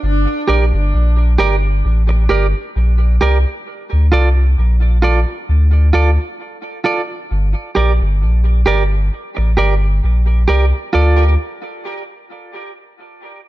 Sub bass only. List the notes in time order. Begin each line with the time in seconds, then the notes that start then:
0.03 G1
0.49 A#1
0.74 G1
0.94 A#1
1.40 G1
1.85 A1
2.31 G1
2.76 A#1
3.22 C2
3.93 D2
4.13 C2
4.58 A#1
5.49 D2
5.95 D2
7.31 G1
7.77 A#1
8.02 G1
8.22 A#1
8.67 G1
9.38 A1
9.58 G1
10.04 A#1
10.49 C2
10.95 D2